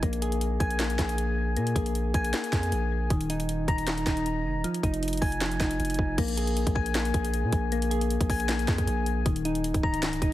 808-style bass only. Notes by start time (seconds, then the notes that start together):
0.03 A#1
0.60 A#1
0.99 A#1
1.57 A#2
1.76 A#1
2.14 A#1
2.53 F2
2.72 A#1
3.10 D#1
3.68 D#1
4.06 D#1
4.45 F1
4.55 D#1
4.83 F1
5.22 F1
5.60 F1
5.80 F1
5.99 F1
6.18 A#1
6.67 A#1
7.14 A#1
7.44 A#2
7.53 A#1
8.21 A#1
8.68 F2
8.87 A#1
9.26 D#1
9.74 C#1
10.22 D#1